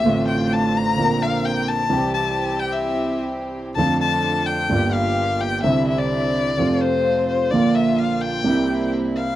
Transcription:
<<
  \new Staff \with { instrumentName = "Violin" } { \time 4/4 \key c \mixolydian \tempo 4 = 128 e''8 g''8 a''8 bes''4 f''8 g''8 a''8~ | a''8 a''4 g''16 e''4 r4 r16 | a''8 a''4 g''4 f''4 g''8 | e''8 e''16 d''4.~ d''16 c''4 c''8 |
d''8 e''8 f''8 g''4. r8 f''8 | }
  \new Staff \with { instrumentName = "String section" } { \time 4/4 \key c \mixolydian <a, c' d' f'>2 <c' d' bes'>2 | <c' e' g'>1 | <d' f' a'>2 <bes f' g'>2 | <c' d' e'>2 <a c' f'>2 |
<bes d' f'>2 <bes c' e'>2 | }
  \new Staff \with { instrumentName = "Grand piano" } { \clef bass \time 4/4 \key c \mixolydian <a,, a, d a c' f'>2 <bes,, bes, d bes c' f'>2 | <c, c e g c' g'>1 | <f, d f a c' f'>2 <g,, g, d g bes f'>2 | <c, c d g c' e'>2 <f, c f a f'>2 |
<bes,, bes, d f bes f'>2 <c, c g bes e'>2 | }
>>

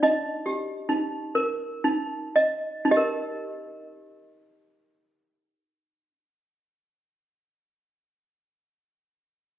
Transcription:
\new Staff \with { instrumentName = "Toy piano" } { \time 3/4 \key ees \major \tempo 4 = 54 << { ees''2~ ees''8 r8 | <ees' g' bes' ees''>2.~ | <ees' g' bes' ees''>2. | } \\ { ees'8 g'8 ees'8 bes'8 ees'8 ees''8 | r2. | r2. | } >> }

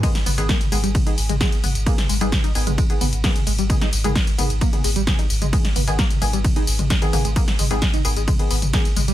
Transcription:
<<
  \new Staff \with { instrumentName = "Synth stab" } { \time 4/4 \key gis \minor \tempo 4 = 131 <dis b gis'>16 r8 <dis b gis'>8 r16 <dis b gis'>8 r16 <dis b gis'>8 r16 <dis b gis'>16 r8. | <dis b gis'>16 r8 <dis b gis'>8 r16 <dis b gis'>8 r16 <dis b gis'>8 r16 <dis b gis'>16 r8. | <dis b gis'>16 r8 <dis b gis'>8 r16 <dis b gis'>8 r16 <dis b gis'>8 r16 <dis b gis'>16 r8. | <dis b gis'>16 r8 <dis b gis'>8 r16 <dis b gis'>8 r16 <dis b gis'>8 r8 <dis b gis'>16 <dis b gis'>8 |
<dis b gis'>16 r8 <dis b gis'>8 r16 <dis b gis'>8 r16 <dis b gis'>8 r16 <dis b gis'>16 r8. | }
  \new Staff \with { instrumentName = "Synth arpeggio sound" } { \clef bass \time 4/4 \key gis \minor gis16 r16 b16 r16 ais16 r16 gis16 g16 r16 dis'16 r16 gis16 gis16 r16 b16 r16 | ais16 r16 gis16 g16 r16 dis'16 r16 gis16 gis16 r16 b16 r16 ais16 r16 gis16 g16 | r16 dis'16 r16 gis16 gis16 r16 b16 r16 ais16 r16 gis16 g16 r16 dis'16 r16 gis16 | gis16 r16 b16 r16 ais16 r16 gis16 g16 r16 dis'16 r16 gis16 gis16 r16 ais16 gis16 |
ais16 r16 gis16 g16 r16 dis'16 r16 gis16 gis16 r16 b16 r16 ais16 r16 gis16 g16 | }
  \new Staff \with { instrumentName = "Sub bass" } { \clef bass \time 4/4 \key gis \minor r8 gis,,16 gis,,16 r8 gis,,16 gis,,16 r8 gis,,16 gis,,16 r8 gis,,16 gis,,16 | r8 gis,,16 gis,,16 r8 gis,,16 gis,,16 r8 gis,,16 gis,,16 r8 gis,,16 gis,,16 | r8 gis,,16 gis,,16 r8 gis,,16 gis,,16 r8 gis,,16 gis,,16 r8 gis,,16 gis,,16 | r8 gis,,16 gis,,16 r8 gis,,16 gis,,16 r8 gis,,16 gis,,16 r8 gis,,16 gis,,16 |
r8 gis,,16 gis,,16 r8 gis,,16 gis,,16 r8 gis,,16 gis,,16 r8 gis,,16 gis,,16 | }
  \new DrumStaff \with { instrumentName = "Drums" } \drummode { \time 4/4 <hh bd cymr tamb>16 <hh sn tamb>16 <hho tamb toml>16 <hh tamb>16 <hh bd cymr sn tamb>16 <hh tamb toml>16 <hho tamb>16 <hh tamb>16 <hh bd cymr tamb toml>16 hh16 <hho tamb>16 <hh tamb toml>16 <hh bd cymr sn tamb>16 <hh tamb>16 <hho tamb toml>16 <hh tamb>16 | <hh bd cymr tamb>16 <hh sn tamb toml>16 <hho tamb>16 <hh tamb>16 <hh bd cymr sn tamb toml>16 <hh tamb>16 <hho tamb>16 <hh tamb toml>16 <hh bd cymr tamb>16 hh16 <hho tamb toml>16 <hh tamb>16 <hh bd cymr sn tamb>16 <hh tamb toml>16 <hho tamb>16 <hh tamb>16 | <hh bd cymr tamb toml>16 <hh sn tamb>16 <hho tamb>16 <hh tamb toml>16 <hh bd cymr sn tamb>16 <hh tamb>16 <hho tamb toml>16 <hh tamb>16 <hh bd cymr tamb>16 <hh toml>16 <hho tamb>16 <hh tamb>16 <hh bd cymr sn tamb toml>16 <hh tamb>16 <hho tamb>16 <hh tamb toml>16 | <hh bd cymr tamb>16 <hh sn tamb>16 <hho tamb toml>16 <hh tamb>16 <hh bd cymr sn tamb>16 <hh tamb toml>16 <hho tamb>16 <hh tamb>16 <hh bd cymr tamb toml>16 hh16 <hho tamb>16 <hh tamb toml>16 <hh bd cymr sn tamb>16 <hh tamb>16 <hho tamb toml>16 <hh tamb>16 |
<hh bd cymr tamb>16 <hh sn tamb>16 <hho tamb toml>16 <hh tamb>16 <hh bd cymr sn tamb>16 <hh tamb toml>16 <hho tamb>16 <hh tamb>16 <hh bd cymr tamb toml>16 hh16 <hho tamb>16 <hh tamb toml>16 <hh bd cymr sn tamb>16 <hh tamb>16 <hho tamb toml>16 <hh tamb>16 | }
>>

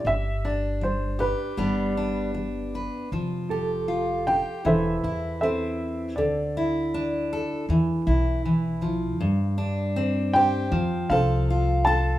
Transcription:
<<
  \new Staff \with { instrumentName = "Upright piano" } { \time 4/4 \key g \mixolydian \tempo 4 = 79 << { e''8 d''8 c''8 b'2 r8 | r4. g''8 e''4 e''4 | d''2.~ d''8 r8 | r4. g''4 f''4 a''8 | } \\ { r1 | r2 <a' c''>4 <a' c''>4 | a'2.~ a'8 r8 | r4. c''4 <a' c''>4. | } >> }
  \new Staff \with { instrumentName = "Clean electric guitar" } { \time 4/4 \key g \mixolydian r1 | r8 a'4. r2 | r1 | r1 | }
  \new Staff \with { instrumentName = "Steel-string acoustic guitar" } { \time 4/4 \key g \mixolydian << { g'8 d'4 g'8 <g b d'>8 d'4 b'8 | r8 g'8 f'8 g'8 r8 e'8 c'4 | r8 e'8 d'8 a'8 r8 e'4. | r8 d'8 c'8 g'8 r8 a'8 f'8 a'8 | } \\ { g,4 g4 g,4 g4 | f2 e2 | d2 e4 e8 f8 | g,2 f2 | } >> }
  \new Staff \with { instrumentName = "Upright bass" } { \clef bass \time 4/4 \key g \mixolydian g,,2 g,,2 | f,,2 e,,8 e,4. | d,2 e,8 b,,4. | g,2 f,8 c,4. | }
>>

